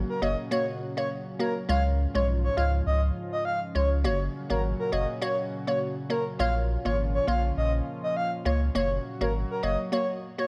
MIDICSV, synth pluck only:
0, 0, Header, 1, 2, 480
1, 0, Start_track
1, 0, Key_signature, 6, "major"
1, 0, Tempo, 588235
1, 1380, Time_signature, 4, 2, 24, 8
1, 8544, End_track
2, 0, Start_track
2, 0, Title_t, "Synth pluck"
2, 0, Program_c, 0, 84
2, 0, Note_on_c, 0, 58, 76
2, 0, Note_on_c, 0, 66, 72
2, 0, Note_on_c, 0, 73, 86
2, 154, Note_off_c, 0, 58, 0
2, 155, Note_off_c, 0, 66, 0
2, 156, Note_off_c, 0, 73, 0
2, 180, Note_on_c, 0, 58, 80
2, 181, Note_on_c, 0, 66, 76
2, 185, Note_on_c, 0, 73, 88
2, 403, Note_off_c, 0, 58, 0
2, 404, Note_off_c, 0, 66, 0
2, 405, Note_off_c, 0, 73, 0
2, 419, Note_on_c, 0, 58, 98
2, 422, Note_on_c, 0, 66, 91
2, 425, Note_on_c, 0, 73, 105
2, 600, Note_off_c, 0, 58, 0
2, 601, Note_off_c, 0, 66, 0
2, 603, Note_off_c, 0, 73, 0
2, 792, Note_on_c, 0, 58, 80
2, 794, Note_on_c, 0, 66, 73
2, 797, Note_on_c, 0, 73, 86
2, 957, Note_off_c, 0, 58, 0
2, 958, Note_off_c, 0, 66, 0
2, 960, Note_off_c, 0, 73, 0
2, 1138, Note_on_c, 0, 58, 84
2, 1140, Note_on_c, 0, 66, 76
2, 1144, Note_on_c, 0, 73, 89
2, 1319, Note_off_c, 0, 58, 0
2, 1320, Note_off_c, 0, 66, 0
2, 1322, Note_off_c, 0, 73, 0
2, 1377, Note_on_c, 0, 56, 94
2, 1380, Note_on_c, 0, 65, 87
2, 1382, Note_on_c, 0, 73, 109
2, 1720, Note_off_c, 0, 56, 0
2, 1722, Note_off_c, 0, 65, 0
2, 1723, Note_off_c, 0, 73, 0
2, 1753, Note_on_c, 0, 56, 77
2, 1755, Note_on_c, 0, 65, 74
2, 1758, Note_on_c, 0, 73, 84
2, 2074, Note_off_c, 0, 56, 0
2, 2075, Note_off_c, 0, 65, 0
2, 2076, Note_off_c, 0, 73, 0
2, 2099, Note_on_c, 0, 56, 79
2, 2101, Note_on_c, 0, 65, 73
2, 2103, Note_on_c, 0, 73, 85
2, 2323, Note_off_c, 0, 56, 0
2, 2323, Note_off_c, 0, 65, 0
2, 2325, Note_off_c, 0, 73, 0
2, 3059, Note_on_c, 0, 56, 81
2, 3062, Note_on_c, 0, 65, 71
2, 3064, Note_on_c, 0, 73, 88
2, 3240, Note_off_c, 0, 56, 0
2, 3241, Note_off_c, 0, 65, 0
2, 3242, Note_off_c, 0, 73, 0
2, 3299, Note_on_c, 0, 58, 97
2, 3301, Note_on_c, 0, 66, 86
2, 3303, Note_on_c, 0, 73, 104
2, 3641, Note_off_c, 0, 58, 0
2, 3643, Note_off_c, 0, 66, 0
2, 3643, Note_off_c, 0, 73, 0
2, 3671, Note_on_c, 0, 58, 79
2, 3674, Note_on_c, 0, 66, 69
2, 3676, Note_on_c, 0, 73, 88
2, 3993, Note_off_c, 0, 58, 0
2, 3994, Note_off_c, 0, 66, 0
2, 3995, Note_off_c, 0, 73, 0
2, 4017, Note_on_c, 0, 58, 80
2, 4019, Note_on_c, 0, 66, 75
2, 4021, Note_on_c, 0, 73, 91
2, 4242, Note_off_c, 0, 58, 0
2, 4243, Note_off_c, 0, 66, 0
2, 4244, Note_off_c, 0, 73, 0
2, 4255, Note_on_c, 0, 58, 97
2, 4259, Note_on_c, 0, 66, 90
2, 4260, Note_on_c, 0, 73, 107
2, 4438, Note_off_c, 0, 58, 0
2, 4440, Note_off_c, 0, 66, 0
2, 4440, Note_off_c, 0, 73, 0
2, 4630, Note_on_c, 0, 58, 76
2, 4632, Note_on_c, 0, 66, 73
2, 4636, Note_on_c, 0, 73, 89
2, 4796, Note_off_c, 0, 58, 0
2, 4797, Note_off_c, 0, 66, 0
2, 4799, Note_off_c, 0, 73, 0
2, 4977, Note_on_c, 0, 58, 80
2, 4979, Note_on_c, 0, 66, 75
2, 4981, Note_on_c, 0, 73, 89
2, 5159, Note_off_c, 0, 58, 0
2, 5160, Note_off_c, 0, 66, 0
2, 5161, Note_off_c, 0, 73, 0
2, 5216, Note_on_c, 0, 58, 97
2, 5219, Note_on_c, 0, 65, 87
2, 5222, Note_on_c, 0, 73, 111
2, 5560, Note_off_c, 0, 58, 0
2, 5561, Note_off_c, 0, 65, 0
2, 5563, Note_off_c, 0, 73, 0
2, 5590, Note_on_c, 0, 58, 78
2, 5593, Note_on_c, 0, 65, 72
2, 5595, Note_on_c, 0, 73, 86
2, 5912, Note_off_c, 0, 58, 0
2, 5914, Note_off_c, 0, 65, 0
2, 5915, Note_off_c, 0, 73, 0
2, 5937, Note_on_c, 0, 58, 81
2, 5940, Note_on_c, 0, 65, 74
2, 5943, Note_on_c, 0, 73, 88
2, 6162, Note_off_c, 0, 58, 0
2, 6163, Note_off_c, 0, 65, 0
2, 6165, Note_off_c, 0, 73, 0
2, 6898, Note_on_c, 0, 58, 80
2, 6900, Note_on_c, 0, 65, 73
2, 6902, Note_on_c, 0, 73, 90
2, 7079, Note_off_c, 0, 58, 0
2, 7080, Note_off_c, 0, 65, 0
2, 7081, Note_off_c, 0, 73, 0
2, 7139, Note_on_c, 0, 58, 92
2, 7141, Note_on_c, 0, 66, 87
2, 7143, Note_on_c, 0, 73, 110
2, 7481, Note_off_c, 0, 58, 0
2, 7482, Note_off_c, 0, 66, 0
2, 7483, Note_off_c, 0, 73, 0
2, 7512, Note_on_c, 0, 58, 80
2, 7514, Note_on_c, 0, 66, 70
2, 7517, Note_on_c, 0, 73, 87
2, 7833, Note_off_c, 0, 58, 0
2, 7834, Note_off_c, 0, 66, 0
2, 7836, Note_off_c, 0, 73, 0
2, 7856, Note_on_c, 0, 58, 81
2, 7858, Note_on_c, 0, 66, 75
2, 7860, Note_on_c, 0, 73, 88
2, 8081, Note_off_c, 0, 58, 0
2, 8082, Note_off_c, 0, 66, 0
2, 8083, Note_off_c, 0, 73, 0
2, 8096, Note_on_c, 0, 58, 94
2, 8099, Note_on_c, 0, 66, 89
2, 8101, Note_on_c, 0, 73, 105
2, 8278, Note_off_c, 0, 58, 0
2, 8280, Note_off_c, 0, 66, 0
2, 8281, Note_off_c, 0, 73, 0
2, 8472, Note_on_c, 0, 58, 77
2, 8474, Note_on_c, 0, 66, 72
2, 8477, Note_on_c, 0, 73, 82
2, 8544, Note_off_c, 0, 58, 0
2, 8544, Note_off_c, 0, 66, 0
2, 8544, Note_off_c, 0, 73, 0
2, 8544, End_track
0, 0, End_of_file